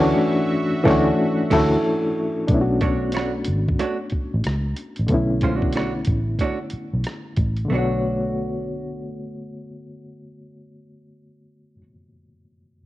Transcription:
Already playing: D2 E3 A3 C#4 D4 E4 F#4 C#5 E5 C#6
0.84 D2 E3 A3 C#4 E4 F#4 C#5, kick, snare
0.89 D4 F#4
1.50 D2 A3 E4 F#4 A4 C#5, kick, snare, crash
2.48 B1 A3 B3 D4, kick, closed hi-hat
2.53 C#4 E4
2.61 F#4
2.81 A3 D4 F#4 C#5, kick, closed hi-hat
3.12 A3 D4 F#4 C#5, closed hi-hat
3.17 cross-stick
3.44 G#1, closed hi-hat
3.68 kick
3.79 A3 D4 F#4 C#5, closed hi-hat
4.10 muted fingered electric bass stroke, kick, closed hi-hat
4.34 A1
4.44 C#2, cross-stick, closed hi-hat
4.77 closed hi-hat
4.96 A1, closed hi-hat
5.07 B1 D3 A3 B3, kick, closed hi-hat
5.12 C#4 E4
5.41 G#3 C#4 F4 C5, kick, closed hi-hat
5.56 A3 D4 F#4 C#5
5.62 kick
5.73 A3 D4 F#4 C#5, closed hi-hat
5.77 cross-stick
6.05 A1, kick, closed hi-hat
6.39 A3 D4 F#4 C#5, kick, closed hi-hat
6.70 muted fingered electric bass stroke, closed hi-hat
6.94 B1
7.04 cross-stick, closed hi-hat
7.37 A1, kick, closed hi-hat
7.56 closed hi-hat
7.65 D3 A3
7.70 B1 A3 B3 D4 F#4
7.75 F#4 C#5

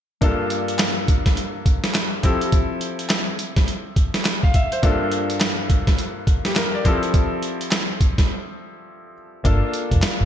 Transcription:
0.21 G2 A#3 D4 F4 A4, kick, closed hi-hat
0.50 closed hi-hat
0.68 closed hi-hat
0.79 snare, clap, closed hi-hat
1.08 kick, closed hi-hat
1.26 kick, snare, closed hi-hat
1.37 closed hi-hat
1.66 kick, closed hi-hat
1.84 snare, closed hi-hat
1.94 snare, clap, closed hi-hat
2.23 F3 C4 E4 G4 A4, kick, closed hi-hat
2.41 closed hi-hat
2.52 kick, closed hi-hat
2.81 closed hi-hat
2.99 closed hi-hat
3.09 snare, clap, closed hi-hat
3.39 closed hi-hat
3.56 kick, snare, closed hi-hat
3.68 closed hi-hat
3.96 kick, closed hi-hat
4.14 snare, closed hi-hat
4.25 snare, clap, closed hi-hat
4.43 F5, kick
4.54 E5, kick, closed hi-hat
4.72 C5, closed hi-hat
4.83 G2 A#3 D4 F4 A4, kick, closed hi-hat
5.12 closed hi-hat
5.30 closed hi-hat
5.40 snare, clap, closed hi-hat
5.70 kick, closed hi-hat
5.87 kick, snare, closed hi-hat
5.98 closed hi-hat
6.27 kick, closed hi-hat
6.45 G4, snare, closed hi-hat
6.55 A#4, snare, clap, closed hi-hat
6.75 D5
6.84 F3 C4 E4 G4 A4, kick, closed hi-hat
7.03 closed hi-hat
7.14 kick, closed hi-hat
7.43 closed hi-hat
7.61 closed hi-hat
7.71 snare, clap, closed hi-hat
8.01 kick, closed hi-hat
8.18 kick, snare, closed hi-hat
9.44 G1 A#3 D4 F4 A4, kick, closed hi-hat
9.74 closed hi-hat
9.91 F1, kick, closed hi-hat
10.02 snare, clap, closed hi-hat
10.21 G1

